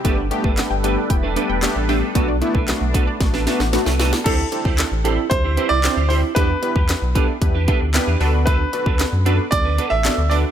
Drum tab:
CC |----------------|----------------|x---------------|----------------|
HH |x-x-x-x-x-x-x-o-|x-x-x-x-x-x-x-o-|x-x-x-x-x-x-x-o-|x-x-x-x-x-x-x-o-|
CP |----x-------x---|----x-----------|----x-------x---|----x-------x---|
SD |----o-------o---|----o---oooooooo|----o-------o---|----o-------o---|
BD |o--o----o-------|o--o--o-o-------|o--o----o-------|o--o--o-o-o-----|

CC |----------------|
HH |x-x-x-x-x-x-x-o-|
CP |----x-------x---|
SD |----o-------o---|
BD |o--o----o-------|